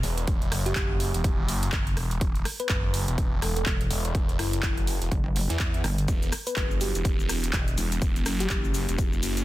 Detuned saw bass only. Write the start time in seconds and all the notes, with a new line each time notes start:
0.03 E1
0.28 E1
0.52 F#1
0.76 F#1
1.14 E1
1.24 E1
1.48 F#1
1.97 E1
2.21 E1
2.70 F#1
3.08 E1
3.18 E1
3.90 E1
4.15 E1
4.39 F#1
4.63 F#1
5.01 E1
5.50 E2
6.08 E1
6.57 F#1
6.95 E1
7.05 E1
7.77 E1
8.02 E1
8.26 F#1
8.50 F#1
8.89 E1
8.99 E1
9.23 F#1